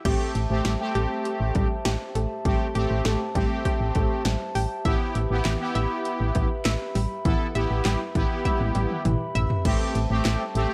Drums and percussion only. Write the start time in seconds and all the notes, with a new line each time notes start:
0.05 kick, closed hi-hat, crash
0.35 closed hi-hat
0.65 snare, closed hi-hat
0.95 closed hi-hat
1.25 closed hi-hat
1.55 kick, closed hi-hat
1.85 snare, closed hi-hat
2.15 closed hi-hat
2.45 kick, closed hi-hat
2.75 closed hi-hat
3.05 snare, closed hi-hat
3.35 kick, closed hi-hat
3.65 kick, closed hi-hat
3.95 kick, closed hi-hat
4.25 snare, closed hi-hat
4.55 open hi-hat
4.85 kick, closed hi-hat
5.15 closed hi-hat
5.45 snare, clap, closed hi-hat
5.75 closed hi-hat
6.05 closed hi-hat
6.35 kick, closed hi-hat
6.65 snare, clap, closed hi-hat
6.95 open hi-hat
7.25 kick, closed hi-hat
7.55 closed hi-hat
7.85 snare, clap, closed hi-hat
8.15 kick, closed hi-hat
8.45 kick, closed hi-hat, high tom
8.60 high tom
8.75 closed hi-hat
8.90 mid tom
9.05 closed hi-hat, mid tom
9.35 closed hi-hat, floor tom
9.50 floor tom
9.65 kick, closed hi-hat, crash
9.95 closed hi-hat
10.25 snare, clap, closed hi-hat
10.55 closed hi-hat